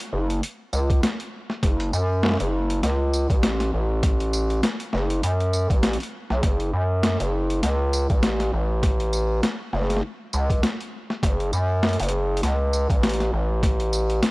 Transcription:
0.00 closed hi-hat
0.13 F#1
0.30 closed hi-hat
0.43 closed hi-hat
0.73 C#2, tambourine
0.90 kick, closed hi-hat
1.03 snare, closed hi-hat
1.20 closed hi-hat
1.50 snare
1.63 F#1, kick, snare, closed hi-hat
1.80 closed hi-hat
1.93 F#2, tambourine
2.23 snare
2.26 snare
2.29 snare
2.32 snare
2.33 snare
2.37 F#1, snare, closed hi-hat
2.70 closed hi-hat
2.83 C#2, snare, closed hi-hat
3.13 tambourine
3.30 A1, kick, closed hi-hat
3.43 snare, closed hi-hat
3.60 snare, closed hi-hat
3.74 A1
4.03 kick, snare, closed hi-hat
4.20 closed hi-hat
4.33 tambourine
4.50 closed hi-hat
4.63 snare, closed hi-hat
4.80 closed hi-hat
4.93 F#1, snare
5.10 closed hi-hat
5.23 F#2, closed hi-hat
5.40 closed hi-hat
5.53 tambourine
5.70 A1, kick, closed hi-hat
5.83 snare, closed hi-hat
5.93 closed hi-hat
6.00 closed hi-hat
6.03 closed hi-hat
6.30 B1, snare
6.43 F#1, kick, snare, closed hi-hat
6.60 closed hi-hat
6.73 F#2
7.03 snare, closed hi-hat
7.20 F#1, closed hi-hat
7.50 closed hi-hat
7.63 C#2, snare, closed hi-hat
7.93 tambourine
8.10 A1, kick, closed hi-hat
8.23 snare, closed hi-hat
8.40 snare, closed hi-hat
8.53 A1
8.83 kick, snare, closed hi-hat
9.00 closed hi-hat
9.13 tambourine
9.43 snare, closed hi-hat
9.73 F#1, snare
9.81 snare
9.90 snare, closed hi-hat
9.97 snare
10.33 C#2, tambourine
10.50 kick, closed hi-hat
10.63 snare, closed hi-hat
10.81 closed hi-hat
11.10 snare
11.23 F#1, kick, snare, closed hi-hat
11.40 closed hi-hat
11.53 F#2, tambourine
11.83 snare, closed hi-hat
11.89 closed hi-hat
11.93 closed hi-hat
12.00 F#1, closed hi-hat
12.03 closed hi-hat
12.09 closed hi-hat
12.37 closed hi-hat
12.43 C#2, snare, closed hi-hat
12.73 tambourine
12.90 A1, kick, closed hi-hat
13.03 snare, closed hi-hat
13.09 closed hi-hat
13.14 closed hi-hat
13.20 snare, closed hi-hat
13.33 A1
13.63 kick, snare, closed hi-hat
13.80 closed hi-hat
13.93 tambourine
14.10 closed hi-hat
14.23 snare, closed hi-hat

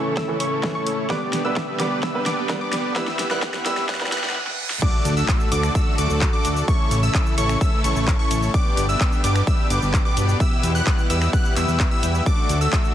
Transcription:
Already playing: C#3 E3 A3 C#4 E4 A4 C#5 C#6, riser
0.17 A3 C#4 E4 A4 E5 E6, kick, snare
0.28 E3 A3 C#4 A4
0.40 A3 C#4 E4 A4 C#5 C#6, open hi-hat
0.63 E3 A3 C#4 A4, kick, snare
0.75 A3 C#4 E4 A4 C#5 C#6
0.87 open hi-hat
1.09 D3 G3 B3 D4 G4 B4 D5 D6, kick, snare
1.33 snare, open hi-hat
1.44 G3 B3 D4 G4 B4 E5 E6
1.56 kick, snare
1.79 G3 B3 D4 G4 B4 D5 D6, snare, open hi-hat
2.03 B3 D4 G4 B4 E5 E6, kick, snare
2.14 G3 B3 D4 B4
2.26 B3 D4 G4 B4 D5 D6, snare, open hi-hat
2.49 G3 B3 D4 B4, kick, snare
2.61 B3 D4 G4 B4 D5 D6
2.73 snare, open hi-hat
2.95 E3 G3 B3 E4 G4 B4 E5 E6, kick, snare
3.08 snare
3.19 snare, open hi-hat
3.30 G3 B3 E4 G4 B4 F#5 F#6, snare
3.42 kick, snare
3.54 snare
3.65 G3 B3 E4 G4 B4 E5 E6, snare, open hi-hat
3.77 snare
3.89 B3 E4 G4 B4 F#5 F#6, kick, snare, reverse cymbal
3.95 snare
4.00 G3 B3 E4 B4, snare
4.06 snare
4.12 B3 E4 G4 B4 F#5 F#6, snare, open hi-hat
4.18 snare
4.24 snare
4.30 snare
4.36 snare
4.47 snare
4.70 snare
4.82 D3 F#3 A3 D4 F#4 A4 D5 D6, kick, crash, impact, cabasa
5.05 D2, open hi-hat, cabasa
5.17 A3 D4 F#4 A4 E5 E6, cabasa
5.28 kick, clap, cabasa
5.40 cabasa
5.52 D2 A3 D4 F#4 A4 D5 D6, open hi-hat, cabasa
5.63 finger snap, cabasa
5.75 A3 D4 F#4 A4 E5 E6, kick, cabasa
5.98 D2 A3 D4 F#4 A4 D5 D6, open hi-hat, cabasa
6.10 D2, cabasa
6.21 kick, clap, cabasa
6.33 A3 D4 F#4 A4 D5 D6
6.45 D2, open hi-hat, cabasa
6.57 cabasa
6.68 C#3 E3 A3 C#4 E4 A4 C#5 C#6, kick, cabasa
6.91 A1, open hi-hat, cabasa
7.03 A3 C#4 E4 A4 E5 E6, cabasa
7.14 kick, clap, cabasa
7.26 cabasa
7.38 A1 A3 C#4 E4 A4 C#5 C#6, open hi-hat, cabasa
7.49 finger snap, cabasa
7.61 A3 C#4 E4 A4 E5 E6, kick, cabasa
7.84 A1 A3 C#4 E4 A4 C#5 C#6, open hi-hat, cabasa
7.96 A1, cabasa
8.08 kick, clap, cabasa
8.19 A3 C#4 E4 A4 C#5 C#6
8.31 A1, open hi-hat, cabasa
8.43 cabasa
8.54 B2 D3 G3 B3 D4 G4 B4 D5 D6, kick, cabasa
8.77 G1, open hi-hat, cabasa
8.89 B3 D4 G4 B4 E5 E6, cabasa
9.01 kick, clap, cabasa
9.12 cabasa
9.24 G1 B3 D4 G4 B4 D5 D6, open hi-hat, cabasa
9.36 finger snap, cabasa
9.47 B3 D4 G4 B4 E5 E6, kick, cabasa
9.70 G1 B3 D4 G4 B4 D5 D6, open hi-hat, cabasa
9.82 G1, cabasa
9.94 kick, clap, cabasa
10.05 B3 D4 G4 B4 D5 D6
10.17 G1, open hi-hat, cabasa
10.29 cabasa
10.40 E3 G3 B3 E4 G4 B4 E5 E6, kick, cabasa
10.63 E2, open hi-hat, cabasa
10.75 B3 E4 G4 B4 F#5 F#6, cabasa
10.87 kick, clap, cabasa
10.98 cabasa
11.10 E2 B3 E4 G4 B4 E5 E6, open hi-hat, cabasa
11.22 finger snap, cabasa
11.33 B3 E4 G4 B4 F#5 F#6, kick, cabasa
11.45 cabasa
11.56 E2 B3 E4 G4 B4 E5 E6, clap, open hi-hat, cabasa
11.68 E2, cabasa
11.80 kick, clap, cabasa
11.91 B3 E4 G4 B4 E5 E6
12.03 E2, open hi-hat, cabasa
12.15 cabasa
12.26 A2 D3 F#3 A3 D4 F#4 A4 D5 D6, kick, cabasa
12.49 D2, open hi-hat, cabasa
12.61 A3 D4 F#4 A4 E5 E6, cabasa
12.73 kick, clap, cabasa
12.84 cabasa

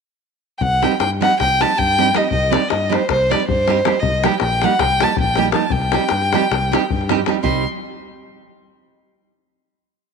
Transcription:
0.58 C2 F#5 G5, davul low
0.82 G3 C4 D#4 G4 G5, davul high
0.92 davul high
1.00 G2 G5, davul high
1.21 G3 C4 D#4 G4 F#5, davul high
1.40 C2 G5, davul high, davul low
1.61 G3 C4 D#4 G4 A5, davul high
1.69 davul high
1.78 G2 G5, davul low
1.98 G3 C4 D#4 G4, davul high
2.06 davul high
2.14 G3 C4 D#4 G4 D#5, davul high
2.30 C2 D#5, davul low
2.50 G3 C4 D#4 G4 D5, davul high
2.62 davul high
2.69 G2 D#5, davul high
2.89 G3 C4 D#4 G4 C5, davul high
3.09 C2 C5, davul high, davul low
3.30 G3 C4 D#4 G4 D5, davul high
3.40 davul high
3.48 G2 C5, davul low
3.67 G3 C4 D#4 G4, davul high
3.77 davul high
3.85 G3 C4 D#4 G4, davul high
3.99 C2 D#5, davul low
4.23 G3 A#3 D#4 G4 G5, davul high
4.32 davul high
4.40 A#1 G5, davul high
4.61 G3 A#3 D#4 G4 F#5, davul high
4.79 C2 G5, davul high, davul low
5.00 G3 A#3 D#4 G4 A5, davul high
5.08 davul high
5.17 A#1 G5, davul low
5.35 G3 A#3 D#4 G4, davul high
5.45 davul high
5.52 G3 A#3 D#4 G4 A5, davul high
5.70 C2 G5, davul low
5.82 davul high
5.92 G3 C4 D#4 G4, davul high
6.01 davul high
6.09 G2, davul high
6.22 davul high
6.33 G3 C4 D#4 G4, davul high
6.43 davul high
6.51 C2, davul high
6.72 G3 C4 D#4 G4, davul high
6.82 davul high
6.90 G2, davul low
7.01 davul high
7.09 G3 C4 D#4 G4, davul high
7.26 G3 C4 D#4 G4, davul high
7.43 C2 G3 C4 D#4 G4 C6, davul low

